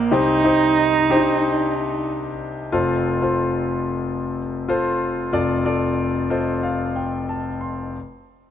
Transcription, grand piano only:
0, 0, Header, 1, 2, 480
1, 0, Start_track
1, 0, Tempo, 652174
1, 88, Time_signature, 4, 2, 24, 8
1, 6261, End_track
2, 0, Start_track
2, 0, Title_t, "Grand piano"
2, 0, Program_c, 0, 0
2, 0, Control_c, 0, 64, 127
2, 0, Note_on_c, 0, 65, 71
2, 0, Note_on_c, 0, 70, 73
2, 0, Note_on_c, 0, 72, 87
2, 0, Note_on_c, 0, 74, 84
2, 84, Note_on_c, 0, 63, 82
2, 88, Note_on_c, 0, 67, 71
2, 89, Note_on_c, 0, 36, 63
2, 90, Note_on_c, 0, 48, 62
2, 92, Note_off_c, 0, 72, 0
2, 92, Note_on_c, 0, 72, 86
2, 96, Control_c, 0, 64, 0
2, 102, Note_off_c, 0, 65, 0
2, 102, Note_off_c, 0, 74, 0
2, 103, Note_off_c, 0, 70, 0
2, 243, Control_c, 0, 64, 127
2, 300, Note_off_c, 0, 63, 0
2, 302, Note_off_c, 0, 67, 0
2, 304, Note_off_c, 0, 72, 0
2, 325, Note_on_c, 0, 63, 74
2, 331, Note_on_c, 0, 67, 72
2, 332, Note_on_c, 0, 72, 80
2, 755, Note_off_c, 0, 63, 0
2, 758, Note_off_c, 0, 67, 0
2, 758, Note_off_c, 0, 72, 0
2, 809, Note_on_c, 0, 62, 71
2, 814, Note_on_c, 0, 67, 80
2, 820, Note_on_c, 0, 72, 94
2, 856, Note_off_c, 0, 62, 0
2, 858, Note_on_c, 0, 63, 88
2, 1668, Note_off_c, 0, 67, 0
2, 1671, Note_off_c, 0, 72, 0
2, 1690, Note_off_c, 0, 63, 0
2, 1979, Note_off_c, 0, 36, 0
2, 1979, Note_off_c, 0, 48, 0
2, 2005, Note_on_c, 0, 65, 81
2, 2007, Note_on_c, 0, 29, 65
2, 2008, Note_on_c, 0, 69, 69
2, 2009, Note_on_c, 0, 41, 66
2, 2012, Note_on_c, 0, 72, 75
2, 2018, Control_c, 0, 64, 0
2, 2143, Control_c, 0, 64, 127
2, 2328, Note_off_c, 0, 65, 0
2, 2330, Note_off_c, 0, 69, 0
2, 2331, Note_off_c, 0, 72, 0
2, 2369, Note_on_c, 0, 65, 66
2, 2370, Note_on_c, 0, 69, 59
2, 2372, Note_on_c, 0, 72, 75
2, 3225, Note_off_c, 0, 65, 0
2, 3226, Note_off_c, 0, 69, 0
2, 3227, Note_off_c, 0, 72, 0
2, 3448, Note_on_c, 0, 65, 77
2, 3454, Note_on_c, 0, 69, 66
2, 3456, Note_on_c, 0, 72, 88
2, 3877, Note_off_c, 0, 65, 0
2, 3879, Note_off_c, 0, 69, 0
2, 3880, Note_off_c, 0, 72, 0
2, 3898, Note_off_c, 0, 29, 0
2, 3899, Note_off_c, 0, 41, 0
2, 3921, Note_on_c, 0, 65, 76
2, 3921, Note_on_c, 0, 69, 67
2, 3922, Note_on_c, 0, 41, 69
2, 3924, Note_on_c, 0, 29, 61
2, 3927, Note_on_c, 0, 74, 81
2, 4139, Note_off_c, 0, 65, 0
2, 4139, Note_off_c, 0, 69, 0
2, 4142, Note_off_c, 0, 74, 0
2, 4159, Note_on_c, 0, 65, 76
2, 4162, Note_on_c, 0, 69, 72
2, 4166, Note_on_c, 0, 74, 76
2, 4592, Note_off_c, 0, 65, 0
2, 4594, Note_off_c, 0, 69, 0
2, 4596, Note_off_c, 0, 74, 0
2, 4636, Note_on_c, 0, 65, 67
2, 4640, Note_on_c, 0, 69, 68
2, 4640, Note_on_c, 0, 75, 53
2, 4643, Note_on_c, 0, 72, 75
2, 4867, Note_off_c, 0, 75, 0
2, 4881, Note_on_c, 0, 77, 60
2, 5107, Note_off_c, 0, 77, 0
2, 5121, Note_on_c, 0, 79, 59
2, 5347, Note_off_c, 0, 79, 0
2, 5366, Note_on_c, 0, 81, 58
2, 5499, Note_off_c, 0, 65, 0
2, 5501, Note_off_c, 0, 69, 0
2, 5503, Note_off_c, 0, 72, 0
2, 5590, Note_off_c, 0, 81, 0
2, 5599, Note_on_c, 0, 84, 49
2, 5816, Note_off_c, 0, 41, 0
2, 5817, Note_off_c, 0, 29, 0
2, 5826, Note_off_c, 0, 84, 0
2, 5857, Control_c, 0, 64, 0
2, 6261, End_track
0, 0, End_of_file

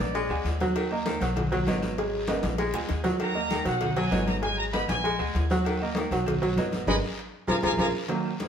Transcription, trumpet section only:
0, 0, Header, 1, 2, 480
1, 0, Start_track
1, 0, Tempo, 305966
1, 1189, Time_signature, 4, 2, 24, 8
1, 13303, End_track
2, 0, Start_track
2, 0, Title_t, "Trumpet section"
2, 0, Program_c, 0, 61
2, 0, Note_on_c, 0, 74, 81
2, 899, Note_off_c, 0, 74, 0
2, 5047, Note_on_c, 0, 82, 101
2, 5707, Note_off_c, 0, 82, 0
2, 5750, Note_on_c, 0, 78, 89
2, 6195, Note_off_c, 0, 78, 0
2, 6221, Note_on_c, 0, 80, 92
2, 6703, Note_off_c, 0, 80, 0
2, 6703, Note_on_c, 0, 82, 90
2, 6812, Note_off_c, 0, 82, 0
2, 6938, Note_on_c, 0, 80, 99
2, 7165, Note_off_c, 0, 80, 0
2, 7174, Note_on_c, 0, 82, 98
2, 7285, Note_off_c, 0, 82, 0
2, 7414, Note_on_c, 0, 83, 100
2, 7643, Note_off_c, 0, 83, 0
2, 7667, Note_on_c, 0, 80, 96
2, 8336, Note_off_c, 0, 80, 0
2, 10791, Note_on_c, 0, 83, 94
2, 10796, Note_on_c, 0, 75, 98
2, 10797, Note_on_c, 0, 80, 98
2, 10905, Note_off_c, 0, 83, 0
2, 10909, Note_off_c, 0, 75, 0
2, 10909, Note_off_c, 0, 80, 0
2, 11739, Note_on_c, 0, 77, 97
2, 11742, Note_on_c, 0, 82, 95
2, 11745, Note_on_c, 0, 80, 90
2, 11857, Note_off_c, 0, 77, 0
2, 11858, Note_off_c, 0, 82, 0
2, 11861, Note_off_c, 0, 80, 0
2, 11987, Note_on_c, 0, 77, 96
2, 11992, Note_on_c, 0, 80, 100
2, 11994, Note_on_c, 0, 82, 93
2, 12102, Note_off_c, 0, 77, 0
2, 12106, Note_off_c, 0, 80, 0
2, 12107, Note_off_c, 0, 82, 0
2, 12226, Note_on_c, 0, 82, 99
2, 12230, Note_on_c, 0, 77, 93
2, 12238, Note_on_c, 0, 80, 95
2, 12341, Note_off_c, 0, 82, 0
2, 12344, Note_off_c, 0, 77, 0
2, 12350, Note_off_c, 0, 80, 0
2, 13303, End_track
0, 0, End_of_file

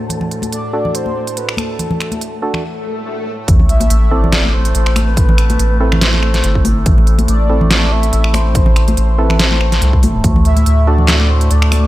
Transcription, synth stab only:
0, 0, Header, 1, 2, 480
1, 0, Start_track
1, 0, Tempo, 422535
1, 114, Time_signature, 4, 2, 24, 8
1, 13485, End_track
2, 0, Start_track
2, 0, Title_t, "Synth stab"
2, 0, Program_c, 0, 62
2, 0, Note_on_c, 0, 62, 76
2, 0, Note_on_c, 0, 66, 70
2, 0, Note_on_c, 0, 69, 83
2, 807, Note_off_c, 0, 62, 0
2, 807, Note_off_c, 0, 66, 0
2, 807, Note_off_c, 0, 69, 0
2, 832, Note_on_c, 0, 62, 74
2, 833, Note_on_c, 0, 66, 69
2, 833, Note_on_c, 0, 69, 83
2, 2727, Note_off_c, 0, 62, 0
2, 2727, Note_off_c, 0, 66, 0
2, 2727, Note_off_c, 0, 69, 0
2, 2752, Note_on_c, 0, 69, 84
2, 2753, Note_on_c, 0, 62, 75
2, 2753, Note_on_c, 0, 66, 70
2, 2993, Note_off_c, 0, 62, 0
2, 2993, Note_off_c, 0, 66, 0
2, 2993, Note_off_c, 0, 69, 0
2, 4673, Note_on_c, 0, 64, 74
2, 4673, Note_on_c, 0, 69, 88
2, 4674, Note_on_c, 0, 60, 79
2, 6567, Note_off_c, 0, 60, 0
2, 6567, Note_off_c, 0, 64, 0
2, 6567, Note_off_c, 0, 69, 0
2, 6592, Note_on_c, 0, 60, 78
2, 6593, Note_on_c, 0, 64, 72
2, 6594, Note_on_c, 0, 69, 87
2, 8487, Note_off_c, 0, 60, 0
2, 8487, Note_off_c, 0, 64, 0
2, 8487, Note_off_c, 0, 69, 0
2, 8514, Note_on_c, 0, 60, 80
2, 8514, Note_on_c, 0, 64, 75
2, 8514, Note_on_c, 0, 69, 88
2, 10408, Note_off_c, 0, 60, 0
2, 10408, Note_off_c, 0, 64, 0
2, 10408, Note_off_c, 0, 69, 0
2, 10432, Note_on_c, 0, 60, 79
2, 10433, Note_on_c, 0, 64, 74
2, 10433, Note_on_c, 0, 69, 87
2, 10891, Note_off_c, 0, 60, 0
2, 10891, Note_off_c, 0, 69, 0
2, 10892, Note_off_c, 0, 64, 0
2, 12352, Note_on_c, 0, 66, 73
2, 12353, Note_on_c, 0, 62, 80
2, 12353, Note_on_c, 0, 69, 87
2, 13485, Note_off_c, 0, 62, 0
2, 13485, Note_off_c, 0, 66, 0
2, 13485, Note_off_c, 0, 69, 0
2, 13485, End_track
0, 0, End_of_file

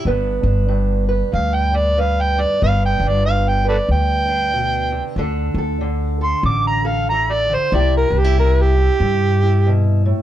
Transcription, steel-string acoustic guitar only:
0, 0, Header, 1, 2, 480
1, 0, Start_track
1, 0, Tempo, 638978
1, 38, Time_signature, 4, 2, 24, 8
1, 7677, End_track
2, 0, Start_track
2, 0, Title_t, "Steel-string acoustic guitar"
2, 0, Program_c, 0, 25
2, 47, Note_on_c, 0, 43, 72
2, 51, Note_on_c, 0, 59, 67
2, 54, Note_on_c, 0, 62, 67
2, 60, Note_on_c, 0, 71, 70
2, 325, Note_off_c, 0, 62, 0
2, 328, Note_on_c, 0, 62, 62
2, 512, Note_off_c, 0, 43, 0
2, 515, Note_on_c, 0, 43, 79
2, 812, Note_off_c, 0, 71, 0
2, 816, Note_on_c, 0, 71, 60
2, 992, Note_off_c, 0, 43, 0
2, 995, Note_on_c, 0, 43, 64
2, 1302, Note_off_c, 0, 62, 0
2, 1305, Note_on_c, 0, 62, 58
2, 1476, Note_off_c, 0, 43, 0
2, 1481, Note_off_c, 0, 71, 0
2, 1485, Note_on_c, 0, 43, 72
2, 1490, Note_on_c, 0, 71, 75
2, 1781, Note_off_c, 0, 62, 0
2, 1784, Note_on_c, 0, 62, 59
2, 1943, Note_off_c, 0, 71, 0
2, 1944, Note_off_c, 0, 59, 0
2, 1959, Note_off_c, 0, 43, 0
2, 1967, Note_on_c, 0, 43, 75
2, 1969, Note_on_c, 0, 59, 65
2, 1979, Note_off_c, 0, 62, 0
2, 1982, Note_on_c, 0, 62, 68
2, 1983, Note_on_c, 0, 71, 78
2, 2269, Note_off_c, 0, 62, 0
2, 2272, Note_on_c, 0, 62, 67
2, 2445, Note_off_c, 0, 43, 0
2, 2454, Note_on_c, 0, 43, 72
2, 2731, Note_off_c, 0, 71, 0
2, 2740, Note_on_c, 0, 71, 54
2, 2911, Note_off_c, 0, 43, 0
2, 2920, Note_on_c, 0, 43, 63
2, 3205, Note_off_c, 0, 62, 0
2, 3214, Note_on_c, 0, 62, 60
2, 3401, Note_off_c, 0, 43, 0
2, 3407, Note_on_c, 0, 47, 66
2, 3691, Note_on_c, 0, 48, 59
2, 3695, Note_off_c, 0, 47, 0
2, 3864, Note_off_c, 0, 59, 0
2, 3864, Note_off_c, 0, 71, 0
2, 3882, Note_off_c, 0, 48, 0
2, 3886, Note_off_c, 0, 62, 0
2, 3888, Note_on_c, 0, 50, 76
2, 3895, Note_on_c, 0, 62, 67
2, 3899, Note_on_c, 0, 69, 70
2, 4180, Note_off_c, 0, 69, 0
2, 4193, Note_on_c, 0, 69, 70
2, 4354, Note_off_c, 0, 50, 0
2, 4363, Note_on_c, 0, 50, 77
2, 4656, Note_off_c, 0, 69, 0
2, 4665, Note_on_c, 0, 69, 62
2, 4838, Note_off_c, 0, 50, 0
2, 4847, Note_on_c, 0, 50, 63
2, 5136, Note_off_c, 0, 69, 0
2, 5145, Note_on_c, 0, 69, 73
2, 5324, Note_off_c, 0, 50, 0
2, 5343, Note_on_c, 0, 52, 67
2, 5622, Note_off_c, 0, 52, 0
2, 5627, Note_on_c, 0, 50, 58
2, 5785, Note_off_c, 0, 62, 0
2, 5785, Note_off_c, 0, 69, 0
2, 5800, Note_off_c, 0, 50, 0
2, 5803, Note_on_c, 0, 48, 76
2, 5810, Note_on_c, 0, 64, 68
2, 5820, Note_on_c, 0, 67, 70
2, 6093, Note_off_c, 0, 64, 0
2, 6096, Note_on_c, 0, 62, 69
2, 6193, Note_off_c, 0, 62, 0
2, 6193, Note_on_c, 0, 64, 53
2, 6281, Note_off_c, 0, 48, 0
2, 6296, Note_on_c, 0, 48, 81
2, 6573, Note_off_c, 0, 64, 0
2, 6595, Note_on_c, 0, 64, 55
2, 6767, Note_off_c, 0, 48, 0
2, 6780, Note_on_c, 0, 48, 64
2, 7061, Note_off_c, 0, 64, 0
2, 7082, Note_on_c, 0, 64, 64
2, 7260, Note_on_c, 0, 47, 70
2, 7538, Note_off_c, 0, 47, 0
2, 7554, Note_on_c, 0, 45, 58
2, 7677, Note_off_c, 0, 45, 0
2, 7677, Note_off_c, 0, 48, 0
2, 7677, Note_off_c, 0, 64, 0
2, 7677, Note_off_c, 0, 67, 0
2, 7677, End_track
0, 0, End_of_file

